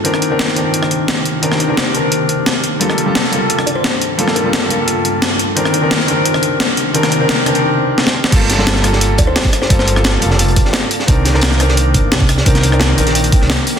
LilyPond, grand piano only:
\new Staff \with { instrumentName = "Grand piano" } { \time 4/4 \key g \minor \tempo 4 = 174 <ees c' d' bes'>8. <ees c' d' bes'>8. <ees c' d' bes'>2~ <ees c' d' bes'>8 | <ees c' d' bes'>8. <ees c' d' bes'>8. <ees c' d' bes'>2~ <ees c' d' bes'>8 | <g bes f' a'>8. <g bes f' a'>8. <g bes f' a'>2~ <g bes f' a'>8 | <g bes f' a'>8. <g bes f' a'>8. <g bes f' a'>2 r8 |
<ees c' d' bes'>8. <ees c' d' bes'>8. <ees c' d' bes'>2~ <ees c' d' bes'>8 | <ees c' d' bes'>8. <ees c' d' bes'>8. <ees c' d' bes'>8 r2 | <g bes f' a'>8. <g bes f' a'>8. <g bes f' a'>2~ <g bes f' a'>8 | <g bes f' a'>8. <g bes f' a'>8. <g bes f' a'>2 r8 |
<ees c' d' bes'>8. <ees c' d' bes'>8. <ees c' d' bes'>2~ <ees c' d' bes'>8 | <ees c' d' bes'>8. <ees c' d' bes'>8. <ees c' d' bes'>2~ <ees c' d' bes'>8 | }